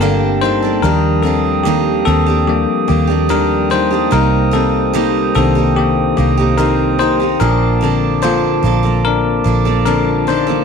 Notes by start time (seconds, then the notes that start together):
Already playing: G1 G3 A3 A#3 C4 G4 A4 G5 A5
0.01 G2 D3 G3 A#3 D4 A4 A#4
0.41 G3 A#3 D4 D#4 A4 C5
0.62 G3 A#3 D4 A4
0.82 D#2 D#3 F3 G3 A#3 D4 G4 A#4 D#6
1.22 G3 A#3 C4 D4 A4
1.27 G4
1.64 D#3 G3 A#3 D4 G4
1.68 G4
2.05 D#2 G3 A#3 C4 D4 A4
2.10 G4
2.26 A#3 D4 G4
2.47 F3 G3 A#3 D4 G4
2.88 D#2 G3 A#3 D4 G4
3.07 A#3 D4 G4
3.29 D#3 G3 A#3 D4 G4 A#4
3.70 G3 A#3 D4 D#4 G4 C5
3.90 A#3 D4 G4
4.11 C2 C3 G3 A#3 D#4 G4 A#4 C5 G5
4.51 G3 A#3 C4 D#4 G4 A4
4.93 C3 G3 A#3 D#4 G4
5.35 C2 D#3 G3 A#3 C4 D4 D#4 G4 A4
5.55 A#3 D#4 G4
5.76 A#3 G4
6.17 C2 G3 A#3 D#4 G4
6.37 A#3 D#4 G4
6.58 C3 G3 A#3 D#4 G4 A#4
6.99 G3 A#3 D#4 G4 C5
7.20 A#3 D#4 G4
7.39 A#1 A#2 D3 F3 A#3 D4 A4 A#4 A5 D6
7.81 D3 F3 A#3 C4 D4 A4
8.22 A#2 D3 F3 A#3 D4 F4 A4 C5
8.62 A#1 F3 A#3 D4 A4
8.83 F3 A#3 D4 A4
9.05 D4 A#4
9.44 A#1 F3 A#3 D4 A4
9.65 F3 A#3 D4 A4
9.86 A#2 D3 F3 A#3 C4 D4 A4 A#4
10.27 F3 A#3 D4 D#4 A4 C5
10.47 F3 A#3 D4 A4